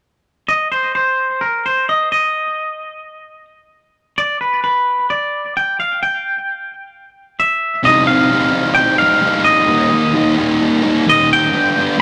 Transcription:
0.48 D#5
0.72 C5
0.95 C5
1.41 A#4
1.66 C5
1.89 D#5
2.12 D#5
4.18 D5
4.41 B4
4.64 B4
5.10 D5
5.57 G5
5.80 F5
6.03 G5
7.40 E5
7.84 C3 G3 C4 D#4 D#5
8.07 G3 C4 D#4 F5
8.30 C3 G3 C4 D#4
8.53 G3 C4 D#4
8.75 G5
8.98 G3 C4 D#4 F5
9.21 C3 G3 C4 D#4
9.44 D#5
9.67 D#3 G3 A#3 D#4
9.90 G3 A#3 D#4
10.13 D#3 G3 A#3 D#4
10.36 G3 A#3 D#4
10.82 G3 A#3 D#4
11.06 D#3 G3 A#3 D#4 D#5
11.33 G5
11.51 G2 D3 G3 B3 D4
11.76 G3 B3 D4
11.97 G2

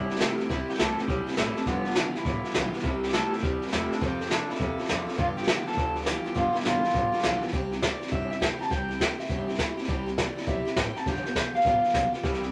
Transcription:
Already playing: G1 C3 G3 C4 E4
0.10 C4 E4 G4, snare
0.15 C3, snare
0.20 C3 G3 A3 C4 E4 G4, snare, hi-hat pedal
0.38 C4 E4 G4, muted upright bass stroke, snare
0.49 C2 C3 G3 C4 E4 G4, kick, snare
0.68 C4 E4 G4, snare
0.74 snare
0.78 C2 C3 G3 A3 C4 E4 G4 A4, snare, hi-hat pedal
0.97 C4 E4 G4, snare
1.08 B1 C3 G3 C4 E4 G4, kick, snare
1.26 C4 E4 G4, muted upright bass stroke, snare
1.32 snare
1.37 A1 C3 G3 A3 C4 E4 G4, snare, hi-hat pedal
1.55 C4 D4 E4 G4, snare
1.66 G1 G2 D3 F3 B3 F4 G4, kick, snare
1.85 F3 B3 F4 G4, snare
1.90 snare
1.95 G2 D3 E3 F3 B3 D4 F4 G4, snare, hi-hat pedal
2.15 F3 B3 E4 F4 G4, muted upright bass stroke, snare
2.25 A1 G2 D3 F3 B3 F4 G4, kick, snare
2.44 F3 B3 F4 G4, snare
2.49 snare
2.54 B1 G2 D3 E3 F3 B3 F4 G4, snare, hi-hat pedal
2.73 F3 B3 F4 G4, muted upright bass stroke, snare
2.79 snare
2.83 C2 C3 G3 C4 E4 G4, kick, snare
3.03 C4 E4 G4, snare
3.08 snare
3.13 C3 G3 A3 C4 E4 G4 A4, snare, hi-hat pedal
3.32 C4 E4 G4, muted upright bass stroke, snare
3.38 snare
3.42 D2 C3 G3 C4 E4 G4, kick, snare
3.62 C4 E4 G4, snare
3.67 snare
3.71 E2 C3 G3 A3 C4 E4 G4, snare, hi-hat pedal
3.91 C4 D4 E4 G4, muted upright bass stroke, snare
4.00 F2 C3 F3 C4 F4 A4, kick, snare
4.19 C4 F4 A4, snare
4.26 snare
4.30 F2 D3 F3 C4 D4 F4 A4, snare, hi-hat pedal
4.48 C4 E4 F4 A4, muted upright bass stroke, snare
4.55 F3, snare
4.60 E2 F2 C3 C4 F4 A4, kick, snare
4.78 C4 F4 A4, snare
4.84 F3, snare
4.89 F2 D3 C4 F4 A4, snare, hi-hat pedal
5.07 C4 F4 A4, snare
5.13 snare
5.17 G2 D3 F3 B3 F4 G4, kick, snare
5.37 F3 B3 F4 G4, snare
5.43 snare
5.47 G2 D3 E3 F3 B3 F4 G4, snare, hi-hat pedal
5.66 F3 B3 F4 G4 A4, muted upright bass stroke, snare
5.71 snare
5.77 D2 G2 D3 F3 B3 F4 G4, kick, snare
5.96 F3 B3 F4 G4, snare
6.01 snare
6.06 G2 D3 E3 F3 B3 F4 G4, snare, hi-hat pedal
6.24 F3 B3 F4 G4, muted upright bass stroke, snare
6.35 G2 D3 F3 B3 F4 G4, kick, snare
6.53 F3 B3 E4 F4 G4, snare
6.60 G2, snare
6.64 G1 G2 D3 E3 F3 B3 F4 G4, snare, hi-hat pedal
6.83 F3 B3 F4 G4, muted upright bass stroke, snare
6.89 F3, snare
6.94 A1 G2 D3 B3 F4 G4, kick, snare
7.12 F3 B3 F4 G4, muted upright bass stroke, snare
7.18 snare
7.23 B1 G2 D3 E3 F3 B3 F4 G4, snare, hi-hat pedal
7.41 F3 B3 F4 G4, muted upright bass stroke, snare
7.47 snare
7.52 C2 C3 G3 C4 E4 G4, kick, snare
7.72 C4 E4 G4, snare
7.81 G3 C4 G4 D5, kick, snare, hi-hat pedal
8.01 C4 E4 G4, muted upright bass stroke, snare
8.07 C3, snare
8.11 G1 G3 C4 E4 G4 E5, kick, snare
8.30 C4 E4 G4 E5, snare
8.40 G3 C4 E4 G4 G5, kick, snare, hi-hat pedal
8.59 C4 E4 G4 A5, muted upright bass stroke, snare
8.70 C2 C3 G3 C4 E4 G4 G5, kick, snare
8.88 C4 E4 G4, snare
8.99 G3 C4 E4 G4 G5, kick, snare, hi-hat pedal
9.18 C4 E4 G4 E5, muted upright bass stroke, snare
9.25 C3, snare
9.30 G1 G3 C4 E4 G4, kick, snare
9.48 C4 E4 G4, snare
9.54 snare
9.58 G3 C4 E4 G4, kick, snare, hi-hat pedal
9.77 C4 E4 G4, muted upright bass stroke, snare
9.84 C3, snare
9.88 C2 G3 C4 E4 G4, kick, snare
10.06 C4 E4 G4, snare
10.17 G3 C4 E4 G4 D5, kick, snare, hi-hat pedal
10.36 C4 E4 G4, muted upright bass stroke, snare
10.42 snare
10.47 B1 C3 G3 C4 E4 G4 E5, kick, snare
10.65 C4 E4 G4, snare
10.76 A1 G3 C4 E4 G4 G5, kick, snare, hi-hat pedal
10.95 C4 E4 G4 A5, snare
11.06 G1 G2 D3 F3 B3 F4 G4 G5, kick, snare
11.16 snare
11.25 F3 B3 F4 G4, snare
11.35 F3 B3, kick, snare, hi-hat pedal
11.54 F3 B3 F4 G4 F5, muted upright bass stroke, snare
11.60 snare
11.65 A1 G2 D3 F3 B3 F4 G4, kick, snare
11.84 F3 B3 F4 G4, snare
11.89 snare
11.93 B1 F3 B3 F4 G4, kick, snare, hi-hat pedal
12.13 F3 B3 F4 G4, muted upright bass stroke, snare
12.23 C2 C3 G3 C4 E4 G4, kick, snare
12.33 snare
12.42 C4 E4 G4, snare

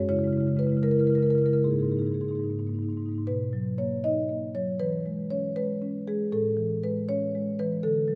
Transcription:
0.00 G#3
0.09 C#3 G#3 E4 C#5
0.16 C#3 G#3 E4
0.24 C#3 G#3 E4
0.33 G#3 E4
0.38 C#3 G#3 E4
0.47 C#3 G#3 E4
0.55 C#3 G#3 E4 B4
0.63 G#3 E4
0.67 C#3 E4
0.72 G#3
0.77 C#3 E4
0.83 C#3 G#3 E4 A#4
0.90 C#3 G#3 E4 A#4
0.97 C#3 G#3 E4 A#4
1.04 G#3 E4 A#4
1.10 C#3 E4
1.15 C#3 G#3 A#4
1.19 G#3 E4 A#4
1.26 C#3 G#3 E4
1.30 A#4
1.35 C#3 G#3 E4 A#4
1.41 C#3 E4
1.46 G#3 E4 A#4
1.53 C#3 G#3 E4 A#4
1.64 G#2 A#3 D#4 G#4
1.71 G#2 A#3 D#4 G#4
1.79 A#3 D#4 G#4
1.83 G#2 G#4
1.88 G#2 A#3 D#4 G#4
1.97 A#3 D#4 G#4
2.02 G#2 D#4
2.07 A#3 G#4
2.12 G#2 A#3 D#4 G#4
2.21 G#2 A#3 D#4 G#4
2.28 G#2 D#4 G#4
2.33 A#3 D#4 G#4
2.40 G#2 A#3
2.44 D#4
2.50 G#2 A#3 D#4
2.59 G#2 A#3 D#4
2.66 G#2 A#3 D#4
2.74 A#3 D#4
2.79 G#2 D#4
2.84 A#3
2.88 G#2 D#4
2.93 A#3
2.97 G#2 D#4
3.02 A#3 D#4
3.08 G#2 A#3
3.15 G#2 D#4
3.27 B2 B4
3.53 F#3
3.78 A#3 C#5
4.04 D#4 D#5
4.29 A#3
4.55 F#3 C#5
4.80 E3 B4
5.06 G#3
5.30 C#4 C#5
5.56 G#3 B4
5.82 C#4
6.08 G#3 G#4
6.32 A2 A4
6.57 E3
6.83 G#3 B4
7.09 C#4 C#5
7.35 G#3
7.59 E3 B4
7.83 D3 A4
8.08 F#3

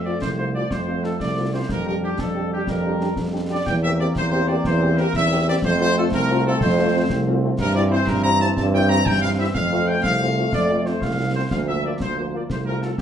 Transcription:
Already playing: F2 F3 A3
0.05 A3 C4 F4 D5
0.21 C2 C5, concert bass drum, snare
0.38 A3 C4 F4 C5
0.55 A3 C4 F4 D5
0.71 F2 C5, concert bass drum, snare
0.87 A3 C4 F4
1.04 A3 C4 F4 A4, snare
1.20 C2 D5, concert bass drum, snare
1.37 A3 C4 F4
1.53 A3 C4 F4 C5
1.69 F2 G3 D4 A#4, concert bass drum, snare
1.86 G3 D4 G4 A#4
2.02 G3 D4 G4
2.19 F2 A4, concert bass drum, snare
2.35 G3 D4 G4
2.51 G3 D4 G4
2.67 F2 A#4, concert bass drum, snare
2.84 G3 D4 G4
3.01 G3 D4 G4, snare
3.16 F2, concert bass drum, snare
3.33 G3 D4 G4
3.50 G3 D4 G4 D5
3.67 E2 A#3 C4 G5, concert bass drum, snare, crash
3.83 A#3 C4 G4 E5
3.99 A#3 C4 G4 D5
4.16 E2 C5, concert bass drum, snare
4.31 A#3 C4 G4 C5
4.48 A#3 C4 G4 D5
4.64 E2 C5, concert bass drum, snare
4.82 A#3 C4 G4
4.97 A#3 C4 G4 A#4, snare
5.14 E2 E5, concert bass drum, snare
5.31 A#3 C4 G4
5.47 A#3 C4 G4 D5
5.62 F2 A3 C4 C5, concert bass drum, snare
5.80 A3 C4 F4 C5
5.96 A3 C4 F4 A4
6.12 C2 A#4, concert bass drum, snare
6.30 A3 C4 F4
6.46 A3 C4 F4 A4
6.61 F2 C5, concert bass drum, snare
6.78 A3 C4 F4
6.95 A3 C4 F4
7.10 C2, concert bass drum, snare
7.27 A3 C4 F4
7.43 A3 C4 F4
7.59 G2 E3 C4 A#4, concert bass drum, snare, crash
7.74 G3 C4 E4 D5
7.91 G3 C4 E4 C5
8.07 G2 A#4, concert bass drum, snare
8.23 G3 C4 E4 A#5
8.40 G3 C4 E4 A5
8.57 G2 A5, concert bass drum, snare
8.74 G3 C4 E4 G5
8.90 G3 C4 E4 A#5, snare
9.06 G2 G5, concert bass drum, snare
9.22 G3 C4 E4 F5
9.38 G3 C4 E4 E5
9.54 F2 F3 A3 F5, concert bass drum, snare
9.72 A3 C4 F4
9.88 A3 C4 F4 G5
10.03 C2 F5, concert bass drum, snare
10.22 A3 C4 F4
10.37 A3 C4 F4
10.53 F2 D5, concert bass drum, snare
10.69 A3 C4 F4
10.85 A3 C4 F4 C5, snare
11.02 C2 F5, concert bass drum, snare
11.18 A3 C4 F4
11.34 A3 C4 F4 C5
11.51 D2 F3 A#3 F5, concert bass drum, snare, crash
11.68 A#3 F4 E5
11.85 A#3 F4 D5
12.00 D2 C5, concert bass drum, snare
12.17 A#3 F4 C5
12.34 A#3 F4 D5
12.50 C2 A3 C5, concert bass drum, snare
12.66 A3 C4 F4 A#4
12.82 A3 C4 F4 A4, snare
12.98 G4, concert bass drum, snare

